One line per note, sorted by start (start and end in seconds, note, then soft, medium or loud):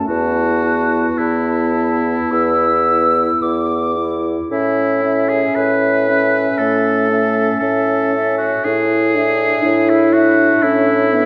0.08 1.06 E2 medium
0.08 3.93 B3 medium
0.08 0.62 E4 soft
0.08 1.20 F#4 medium
0.08 0.62 A5 soft
0.64 1.73 E4 soft
0.64 1.07 A5 soft
1.18 2.18 E2 soft
1.18 3.41 E4 medium
1.18 2.32 A5 medium
1.74 2.30 E4 soft
2.31 3.29 E2 medium
2.31 2.71 E4 soft
2.31 3.43 E6 medium
2.87 3.94 E4 soft
3.42 4.37 E2 soft
3.42 4.28 D6 medium
3.97 4.49 E4 soft
4.51 5.44 A2 medium
4.51 5.02 C#4 soft
4.51 5.31 E4 medium
4.51 5.02 E5 soft
5.03 6.06 C#4 soft
5.03 6.06 E5 soft
5.29 5.57 G#4 medium
5.55 6.47 A2 medium
5.55 6.60 B4 medium
6.09 7.09 C#4 soft
6.09 7.08 E5 soft
6.58 7.50 A2 medium
6.58 7.58 A3 medium
6.58 7.59 A4 medium
7.10 8.12 C#4 soft
7.10 8.12 E5 soft
7.60 8.53 A2 medium
7.60 8.67 C#4 medium
7.60 8.37 A4 medium
8.14 8.65 C#4 soft
8.14 8.65 E5 soft
8.38 8.66 F#4 medium
8.65 9.54 A2 medium
8.65 9.16 E4 medium
8.65 9.91 G#4 medium
9.15 9.64 D4 medium
9.15 10.13 D4 soft
9.15 10.13 E5 soft
9.63 10.53 A2 medium
9.63 10.65 E4 medium
9.90 10.15 E4 medium
10.13 11.12 D4 medium
10.13 10.64 F#4 medium
10.13 11.12 E5 medium
10.63 11.26 A2 medium
10.63 11.15 C#4 medium
10.63 11.26 E4 medium
11.13 11.26 B3 medium
11.13 11.26 D4 medium
11.13 11.26 E5 soft